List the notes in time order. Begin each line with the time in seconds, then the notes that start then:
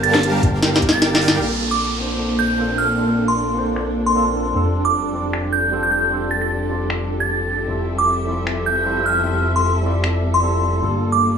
Already playing: G1 G3 F4 G4 A#4 F5 A5
0.03 A6, closed hi-hat
0.14 A6, snare
0.23 closed hi-hat
0.43 G1 G3 G4 A#4 F5 G5, kick, closed hi-hat
0.63 snare, closed hi-hat
0.76 snare
0.82 kick, closed hi-hat
0.89 A6, snare
1.02 snare, closed hi-hat
1.15 snare
1.21 open hi-hat
1.28 snare
1.39 A#1 A#3 C4 D4 F4 A4, downlifter
1.71 D6
1.98 A#3 C4 D4 F4 C5
2.19 finger snap
2.39 G6
2.58 A#3 C4 D4 F4 A4
2.78 F6
2.96 A#3 C4 D4 F4
3.00 A4
3.28 C6
3.54 A#3 C4 D4 F4
3.59 C5
3.76 finger snap
4.06 C6
4.15 A#3 C4 D4 F4 A4
4.53 F1 F3 G3 C4 D4 F4 G4 A4
4.85 D6
5.12 G3 C4 D4 F4
5.16 D5
5.33 finger snap
5.53 G6
5.71 G3 C4 D4 F4 A4
5.83 G6
5.91 G6
6.09 G3 C4 D4 F4 A4
6.31 A6
6.42 A6
6.68 G3 C4 D4 F4
6.72 D5
6.90 finger snap
7.20 A6
7.66 F1 F3 G3 C4 E4 F4 A4 E5
7.98 D6
8.25 G3 C4 E4 F4
8.29 D5
8.47 finger snap
8.66 G6
8.85 G3 C4 E4 F4 A4
9.06 F6
9.23 G3 C4 E4 F4 A4
9.56 C6
9.82 G3 C4 E4 F4 D5
10.04 finger snap
10.34 C6
10.42 G3 C4 E4 F4 A4
10.80 G1 G3 A#3 D4 F4 A4
11.12 D6